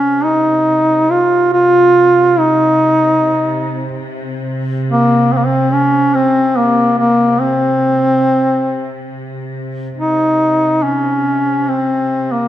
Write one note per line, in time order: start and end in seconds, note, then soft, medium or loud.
0.00 9.97 C3 soft
0.00 0.26 C#4 medium
0.24 1.12 D#4 medium
1.10 1.52 F4 medium
1.53 2.40 F4 loud
2.39 4.07 D#4 medium
4.91 5.34 A#3 medium
5.33 5.39 C4 medium
5.38 5.48 A#3 medium
5.46 5.74 C4 medium
5.73 6.16 C#4 loud
6.14 6.59 C4 loud
6.58 6.97 A#3 medium
6.98 7.42 A#3 medium
7.41 9.10 C4 medium
9.97 12.48 C3 soft
9.97 10.85 D#4 medium
10.83 11.71 C#4 medium
11.69 12.34 C4 medium
12.32 12.48 A#3 medium